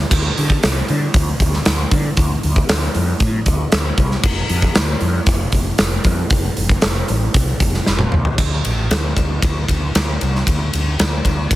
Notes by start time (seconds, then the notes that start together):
0.11 D2, kick, crash
0.38 D3, open hi-hat
0.50 kick
0.63 C2, snare, open hi-hat
0.88 D3, open hi-hat
1.14 D2, kick, open hi-hat
1.40 D2, kick, open hi-hat
1.53 snare
1.65 D2, snare, open hi-hat
1.91 D3, kick, open hi-hat
2.17 D2, kick, open hi-hat
2.43 D2, open hi-hat
2.56 kick
2.69 D2, snare, open hi-hat
2.95 F2, open hi-hat
3.20 A2, kick, open hi-hat
3.46 D2, kick, open hi-hat
3.72 D2, snare, open hi-hat
3.98 C2, kick, open hi-hat
4.11 snare
4.23 F1, kick, crash
4.49 F2, open hi-hat
4.62 kick
4.75 D2, snare, open hi-hat
5.01 F2, open hi-hat
5.26 F1, kick, open hi-hat
5.52 F1, kick, open hi-hat
5.78 F1, snare, open hi-hat
6.04 F2, kick, open hi-hat
6.30 F1, kick, open hi-hat
6.57 F1, open hi-hat
6.69 kick
6.82 F1, snare, open hi-hat
7.08 A1, open hi-hat
7.34 C2, kick, open hi-hat
7.60 F1, kick, open hi-hat
7.74 snare
7.86 F1, snare
7.99 high tom
8.12 D2, mid tom
8.25 floor tom
8.38 D2, kick, crash
8.65 A1, ride
8.90 D2, snare, ride
9.17 D2, kick, ride
9.42 D2, kick, ride
9.68 D2, kick, ride
9.95 D2, snare, ride
10.21 C2, ride
10.35 snare
10.47 D2, kick, ride
10.73 D2, ride
10.99 D2, snare, ride
11.25 D2, kick, ride
11.51 A1, kick, ride